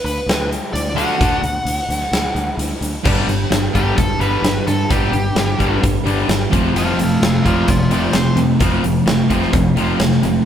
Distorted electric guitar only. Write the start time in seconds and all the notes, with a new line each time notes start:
0.95 D3 D4 F#4 A4
1.18 D3 D4 F#4 A4
3.04 G3 B3 D4
3.27 G3 D4
3.50 G3 D4
3.73 G3 B3 D4
3.97 G3 D4
4.19 G3 B3 D4
4.45 G3 D4
4.68 G3 D4
4.90 G3 B3 D4
5.12 G3 D4
5.36 G3 D4
5.58 G3 B3 D4
5.82 G3 D4
6.04 G3 B3 D4
6.27 G3 D4
6.50 F3 A3 C4
6.75 F3 A3 C4
6.98 F3 A3
7.20 F3 A3
7.42 F3 A3 C4
7.67 F3 A3
7.91 F3 A3 C4
8.13 F3 A3
8.37 F3 A3
8.59 F3 A3 C4
8.83 F3 A3
9.06 F3 A3
9.29 F3 A3 C4
9.53 F3 A3
9.76 F3 A3 C4
10.00 F3 A3
10.23 F3 A3